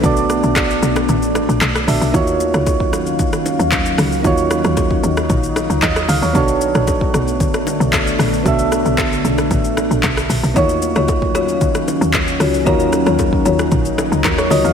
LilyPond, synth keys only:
\new Staff \with { instrumentName = "Synth keys" } { \time 4/4 \key ees \minor \tempo 4 = 114 << { r1 | r1 | r2. ees''8 f''16 des''16~ | des''16 r2. r8. |
r1 | r1 | r2. bes'16 des''16 ees''16 f''16 | } \\ { <b d' fis' a' d''>2.~ <b d' fis' a' d''>8 <b d' fis' a' fes''>8 | <bes ees' f' ges' des''>1 | <bes ees' f' ges' des''>1 | <b d' fis' a' cis''>1 |
<b d' fis' a' fes''>1 | <bes ees' f' ges' des''>1 | <bes ees' f' ges' bes'>2. r4 | } >> }